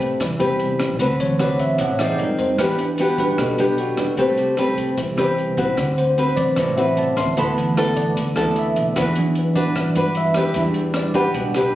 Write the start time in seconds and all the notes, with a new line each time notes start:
Already playing: A1 C3 G3 A3 C4 G4 B4
0.01 closed hi-hat
0.20 E2 E3, kick, cross-stick, closed hi-hat
0.39 E2 C3 G3 B3 C4 G4 B4, closed hi-hat
0.60 closed hi-hat
0.79 A1, cross-stick, closed hi-hat
0.99 D2 D3 C4 F#4 B4, kick, closed hi-hat
1.19 C3 E3 F#3 C#5, closed hi-hat
1.39 C4 F#4 B4 D5, cross-stick, closed hi-hat
1.59 E5, kick, closed hi-hat
1.78 A1 A2 F#5, kick, closed hi-hat
1.99 A1 C4 D#4 G#4 D5, cross-stick, closed hi-hat
2.18 F2 G3 G#3 D#4 A#4, closed hi-hat
2.38 F2 C5, closed hi-hat
2.58 E2 E3 B3 D4 G4 B4, kick, cross-stick, closed hi-hat
2.79 D4, closed hi-hat
2.98 B3 D4 F#4 G4, closed hi-hat
3.18 G3 D4 F#4 B4, kick, closed hi-hat
3.38 B1 B2 A4, kick, cross-stick, closed hi-hat
3.58 B1 B3 D4 G4, closed hi-hat
3.78 F#4, closed hi-hat
3.97 E2 B4, cross-stick, closed hi-hat
4.17 A1 C3 G3 A3 C4 G4 B4 C5, kick, closed hi-hat
4.38 G4, closed hi-hat
4.57 C4 G4 B4, cross-stick, closed hi-hat
4.78 kick, closed hi-hat
4.97 E2 C3 E3 G3 B3, kick, closed hi-hat
5.17 E2 C4 G4 B4, cross-stick, closed hi-hat
5.38 closed hi-hat
5.57 C2 C4 F#4 B4, kick, closed hi-hat
5.77 D2 D3, kick, cross-stick, closed hi-hat
5.98 C5, closed hi-hat
6.18 C4 F#4 B4, closed hi-hat
6.35 C3 E3 F#3 D5, kick, closed hi-hat
6.56 A1 A2 C5, kick, cross-stick, closed hi-hat
6.77 A1 C4 F#4 B4 E5, closed hi-hat
6.97 A5, closed hi-hat
7.17 D2 C6, cross-stick, closed hi-hat
7.37 D2 D3 B3 E4 A4 B5, kick, closed hi-hat
7.58 E3 A3 B3, closed hi-hat
7.77 B3 E4 A4 B4, cross-stick, closed hi-hat
7.96 D5, kick, closed hi-hat
8.17 D2 D3, kick, closed hi-hat
8.36 D2 B3 E4 A4, cross-stick, closed hi-hat
8.56 E5, closed hi-hat
8.76 B1, closed hi-hat
8.96 E2 E3 D4 F#4 B4, kick, cross-stick, closed hi-hat
9.16 E3 F#3 B3 D4, closed hi-hat
9.35 B4, closed hi-hat
9.56 D4 F#4 B4 D5, kick, closed hi-hat
9.75 G2 E3, kick, cross-stick, closed hi-hat
9.95 G2 D4 F#4 B4, closed hi-hat
10.15 E5, closed hi-hat
10.34 E2 D4 G4 B4, cross-stick, closed hi-hat
10.54 E2 E3 G3 D4, kick, closed hi-hat
10.74 closed hi-hat
10.94 D5, cross-stick, closed hi-hat
11.14 G3 D4 F#4 G4 B4 F#5, kick, closed hi-hat
11.34 B1 B2, kick, closed hi-hat
11.55 B1 D4 G4 B4, cross-stick, closed hi-hat